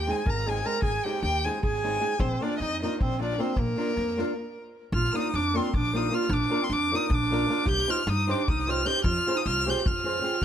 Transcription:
Already playing: G4 G5
0.07 G#3 C4 D#4 G#4 G#5, snare
0.26 G#1 A#4 A#5, kick
0.37 snare
0.46 G#3 C4 D#4 G#4 G#5, snare
0.55 snare
0.64 G#3 C4 D#4 G#4 A#4 A#5, snare
0.82 G#1 G#4 G#5, kick
1.04 G#3 C4 D#4 G4 G#4 G5, snare
1.14 snare
1.23 D#2 G4 G5, snare
1.44 G#3 C4 D#4 G#4 G#5, snare
1.63 G#1 G#4 G#5, kick
1.73 snare
1.84 G#3 C4 D#4 G#4, snare
1.93 snare
2.00 G#3 C4 D#4 G#4
2.19 A#1 C4 C5, kick
2.41 A#3 D4 F4 A#4 D5, snare
2.51 snare
2.59 F2 D#4 D#5, snare
2.82 A#3 D4 D#4 F4 A#4 D#5, snare
3.01 A#1 C4 C5, kick
3.11 snare
3.19 A#3 D4 F4 A#4, snare
3.23 D5
3.30 snare
3.38 A#3 C4 D4 F4 A#4 C5, snare
3.56 A#1 A#3 A#4, kick
3.76 A#3 D4 F4 A#4, snare
3.88 snare
3.96 F2, snare
4.07 snare
4.17 A#3 D4 F4 A#4, snare
4.92 A#1 F4 F6, kick
5.04 snare
5.13 A#3 D4 D#4 F4 A#4 D#6, snare
5.34 F2 D4 D6, snare
5.54 A#3 C4 D4 F4 A#4 C6, snare
5.74 A#1 D4 D6, kick
5.84 snare
5.93 A#3 D4 D#4 F4 A#4 D#6, snare
6.11 A#3 D4 F4 A#4 F6, snare
6.21 snare
6.29 A#1 D4 D6, kick
6.41 snare
6.50 A#3 D4 F4 A#4, snare
6.62 C4 C6
6.70 F2 D4 D6, snare
6.92 A#3 D4 D#4 F4 A#4, snare
6.96 D#6
7.10 A#1 D4, kick
7.15 D6
7.22 snare
7.31 A#3 D4 F4 A#4, snare
7.48 A#3 D4 F4 A#4, snare
7.58 snare
7.66 C2 G4 G6, kick
7.78 snare
7.88 C4 D#4 F4 G4 C5 F6, snare
8.03 F4 F6
8.07 G2 D#4 D#6, snare
8.27 C4 D4 D#4 G4 C5, snare
8.31 D6
8.48 C2 D#4 D#6, kick
8.58 snare
8.67 C4 D#4 F4 G4 C5 F6, snare
8.85 C4 D#4 G4 C5 G6, snare
8.95 snare
9.04 F2 F4 F6, kick
9.16 snare
9.26 C4 F4 G#4 C5, snare
9.35 D#4 D#6, snare
9.45 C2 F4 F6, snare
9.56 snare
9.66 C4 F4 G4 G#4 C5 G6, snare
9.77 snare
9.85 F2 F4 F6, kick
9.97 snare
10.04 C4 F4 G#4 C5, snare
10.15 snare
10.22 C4 F4 G#4 C5, snare
10.33 snare
10.42 G4, kick

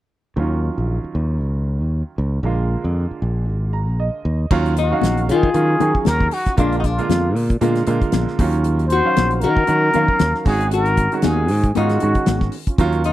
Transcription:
0.36 D#2 D#3 F#3 C#4 F4
0.78 A#1
1.04 muted fingered electric bass stroke
1.15 D#2
1.41 C#2
1.81 D#2
2.18 C#2
2.43 A#1 D3 G#3 A#3 F4
2.84 F2
3.11 muted fingered electric bass stroke
3.22 A#1
3.48 G#1
3.73 A#5
3.88 A#1
4.00 D#5
4.25 D#2
4.51 D#2 D#3 F#3 C#4 F4, kick, crash, muted conga
4.66 closed hi-hat
4.77 C#4 D#4 F4, closed hi-hat
4.82 F#4
4.91 D#3 F#3 C#4 F5
5.02 A#1, snare, closed hi-hat, high conga
5.17 closed hi-hat
5.29 D#3 F4 G#4, closed hi-hat
5.43 kick
5.54 D#3 F#3 C#4 F4, closed hi-hat, muted conga
5.80 D#3 F#3 C#4 G#4, closed hi-hat, muted conga, high conga
5.95 kick
6.05 D#2 F#4 A#4, snare, closed hi-hat, high conga
6.20 kick
6.31 D#4 F#4, open hi-hat, muted conga
6.46 C#4 F4, kick, snare, closed hi-hat
6.57 A#1 D3 G#3 A#3 D4 F4, kick, closed hi-hat, muted conga
6.72 closed hi-hat
6.78 D#4 F#4
6.83 A#3 D4 F4 G#4, kick, closed hi-hat
6.98 D3 G#3 A#3 F4, closed hi-hat
7.09 F2, snare, closed hi-hat, high conga
7.35 A#2, open hi-hat
7.50 kick, closed hi-hat
7.61 A#2 D3 G#3 A#3 F4, closed hi-hat, muted conga, high conga
7.75 snare, closed hi-hat
7.87 A#2 D3 G#3 A#3 F4, closed hi-hat, muted conga
8.01 kick, closed hi-hat
8.12 A#1, snare, closed hi-hat, high conga
8.28 snare
8.39 D#2 D#3 F#3 C#4 F4, kick, open hi-hat
8.53 closed hi-hat
8.64 closed hi-hat, muted conga
8.79 closed hi-hat
8.88 C#4 C5, closed hi-hat
8.92 F4 F#4
9.05 D#3 F#3 C#4 F5
9.17 A#1, snare, closed hi-hat, high conga
9.31 closed hi-hat
9.40 D#3 F#4 A#4, closed hi-hat
9.57 kick
9.67 D#3 F#3 C#4 F#4, closed hi-hat, muted conga
9.94 D#3 F#3 C#4 F5, closed hi-hat, muted conga, high conga
10.08 kick
10.19 D#2, snare, closed hi-hat, high conga
10.35 snare
10.45 G#1 D#3 G#3 C#4 D#4 F#4 G#4, kick, open hi-hat, muted conga
10.61 closed hi-hat
10.71 F#4 A#4, closed hi-hat, muted conga
10.86 closed hi-hat
10.97 C#4 F#4, kick, closed hi-hat
11.12 D#3 G#3 C#4 F#4, closed hi-hat
11.22 D#2 D#4 G#4, snare, closed hi-hat, high conga
11.48 G#2, open hi-hat
11.63 kick, closed hi-hat
11.75 G#2 D#3 G#3 C#4 D#4 F4 F#4, closed hi-hat, muted conga, high conga
11.89 snare, closed hi-hat
12.00 G#2 D#3 G#3 C#4 F#4, closed hi-hat, muted conga
12.15 kick, closed hi-hat
12.26 G#1, snare, closed hi-hat, high conga
12.41 kick, snare
12.52 open hi-hat, muted conga
12.67 C#4 F4, kick, closed hi-hat
12.78 D#2 D#3 F#3 C#4 F4, kick, closed hi-hat
12.92 closed hi-hat
13.04 D#4 F#4 G#4, closed hi-hat

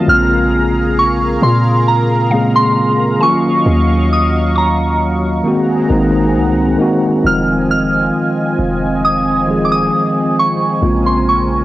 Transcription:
Already playing: D#5
0.06 A#1 C#3 G#3 A#3 C4 F4 G#4 A#4 F5 A#5 F6
0.99 C#6
1.42 A#2 C6
1.88 A#5
2.30 C#3 G#3 A#3 C4 F5
2.34 G#4
2.56 C6
3.19 D#3 F3 F#3 A#3 C#4 F4 D#5 F5 G#5 C#6
3.27 F#3
3.66 D#2
4.13 D#6
4.56 A#5 C#6
5.43 D#3 G#3 A#3 C4 G#4 F#5 A#5
5.48 F#4
5.88 G#1 D#3 G#3 A#3 C4 D#4
6.35 C2
6.78 D#3 G#3 A#3 C4
6.82 F#4
7.22 F1 D#3 F3 G#3 C4 F4 D#5 G#5
7.27 F4 F6
7.71 F6
8.59 F1
9.05 D#6
9.46 D#3 F3 G#3 C4
9.51 G#4
9.65 D6
9.72 D#6
10.39 C#6
10.81 A#1 C#3 G#3 A#3 C4 F4 A#4 G#5
11.06 C6
11.29 C#6

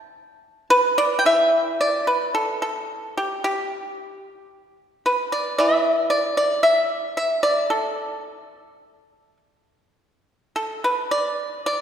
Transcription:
Already playing: A5
0.70 B4
0.98 D5
1.19 G5
1.25 E3 E5
1.81 D5
2.07 B4
2.35 A4
2.62 A4
3.17 G4
3.44 G4
5.06 B4
5.32 D5
5.58 E3 E5
6.10 D5
6.37 D5
6.63 E5
7.17 E5
7.43 D5
7.70 A4
10.56 A4
10.84 B4
11.11 D5
11.66 D5

